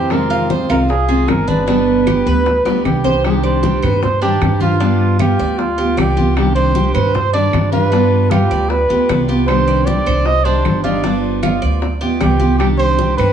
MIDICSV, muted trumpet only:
0, 0, Header, 1, 2, 480
1, 0, Start_track
1, 0, Key_signature, -3, "minor"
1, 0, Tempo, 390625
1, 128, Time_signature, 4, 2, 24, 8
1, 16377, End_track
2, 0, Start_track
2, 0, Title_t, "Muted trumpet"
2, 0, Program_c, 0, 59
2, 0, Note_on_c, 0, 67, 101
2, 148, Note_on_c, 0, 70, 89
2, 167, Note_off_c, 0, 67, 0
2, 620, Note_off_c, 0, 70, 0
2, 864, Note_on_c, 0, 70, 85
2, 970, Note_off_c, 0, 70, 0
2, 1105, Note_on_c, 0, 68, 97
2, 1579, Note_on_c, 0, 70, 87
2, 1598, Note_off_c, 0, 68, 0
2, 1812, Note_on_c, 0, 71, 94
2, 1831, Note_off_c, 0, 70, 0
2, 3495, Note_off_c, 0, 71, 0
2, 3502, Note_on_c, 0, 67, 79
2, 3949, Note_off_c, 0, 67, 0
2, 3994, Note_on_c, 0, 67, 84
2, 4054, Note_on_c, 0, 68, 75
2, 4073, Note_off_c, 0, 67, 0
2, 4120, Note_on_c, 0, 67, 79
2, 4139, Note_off_c, 0, 68, 0
2, 4227, Note_off_c, 0, 67, 0
2, 4234, Note_on_c, 0, 72, 85
2, 4713, Note_on_c, 0, 71, 86
2, 4732, Note_off_c, 0, 72, 0
2, 4945, Note_off_c, 0, 71, 0
2, 4952, Note_on_c, 0, 72, 94
2, 5171, Note_off_c, 0, 72, 0
2, 5190, Note_on_c, 0, 67, 91
2, 5633, Note_off_c, 0, 67, 0
2, 5673, Note_on_c, 0, 65, 88
2, 6339, Note_off_c, 0, 65, 0
2, 6396, Note_on_c, 0, 67, 90
2, 6863, Note_on_c, 0, 65, 95
2, 6882, Note_off_c, 0, 67, 0
2, 7355, Note_on_c, 0, 67, 86
2, 7374, Note_off_c, 0, 65, 0
2, 7821, Note_off_c, 0, 67, 0
2, 7829, Note_on_c, 0, 67, 89
2, 8045, Note_off_c, 0, 67, 0
2, 8052, Note_on_c, 0, 72, 108
2, 8501, Note_off_c, 0, 72, 0
2, 8527, Note_on_c, 0, 71, 96
2, 8779, Note_on_c, 0, 72, 106
2, 8797, Note_off_c, 0, 71, 0
2, 9004, Note_off_c, 0, 72, 0
2, 9012, Note_on_c, 0, 74, 109
2, 9460, Note_off_c, 0, 74, 0
2, 9487, Note_on_c, 0, 71, 104
2, 10206, Note_on_c, 0, 67, 98
2, 10224, Note_off_c, 0, 71, 0
2, 10685, Note_on_c, 0, 71, 106
2, 10704, Note_off_c, 0, 67, 0
2, 11407, Note_off_c, 0, 71, 0
2, 11637, Note_on_c, 0, 72, 106
2, 12111, Note_on_c, 0, 74, 109
2, 12129, Note_off_c, 0, 72, 0
2, 12610, Note_on_c, 0, 75, 116
2, 12628, Note_off_c, 0, 74, 0
2, 12835, Note_on_c, 0, 72, 109
2, 12854, Note_off_c, 0, 75, 0
2, 13305, Note_off_c, 0, 72, 0
2, 13312, Note_on_c, 0, 74, 93
2, 13765, Note_off_c, 0, 74, 0
2, 15009, Note_on_c, 0, 67, 92
2, 15453, Note_off_c, 0, 67, 0
2, 15459, Note_on_c, 0, 67, 91
2, 15572, Note_off_c, 0, 67, 0
2, 15699, Note_on_c, 0, 72, 112
2, 16157, Note_off_c, 0, 72, 0
2, 16185, Note_on_c, 0, 71, 108
2, 16377, Note_off_c, 0, 71, 0
2, 16377, End_track
0, 0, End_of_file